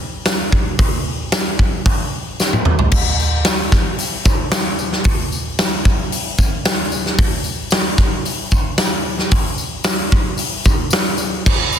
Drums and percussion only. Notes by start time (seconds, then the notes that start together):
0.26 snare, open hi-hat, tambourine
0.52 kick
0.79 kick, open hi-hat
1.32 snare, open hi-hat, tambourine
1.59 kick
1.86 kick, open hi-hat
2.40 snare, tambourine
2.53 high tom
2.65 mid tom
2.79 floor tom
2.91 kick, crash
3.19 tambourine
3.45 snare, open hi-hat, tambourine
3.71 kick, snare, tambourine
3.98 open hi-hat, tambourine
4.25 kick, tambourine
4.52 snare, open hi-hat, tambourine
4.79 tambourine
4.92 snare
5.04 kick, open hi-hat
5.32 tambourine
5.59 snare, open hi-hat, tambourine
5.85 kick, tambourine
6.12 open hi-hat, tambourine
6.38 kick, tambourine
6.65 snare, open hi-hat, tambourine
6.92 tambourine
7.06 snare
7.19 kick, open hi-hat
7.44 tambourine
7.71 snare, open hi-hat, tambourine
7.97 kick, snare, tambourine
8.25 open hi-hat, tambourine
8.51 kick, tambourine
8.78 snare, open hi-hat, tambourine
9.19 snare
9.31 kick, open hi-hat, tambourine
9.58 tambourine
9.84 snare, open hi-hat, tambourine
10.12 kick
10.38 open hi-hat, tambourine
10.64 kick, tambourine
10.90 snare, open hi-hat, tambourine
11.18 tambourine
11.46 kick, crash
11.72 tambourine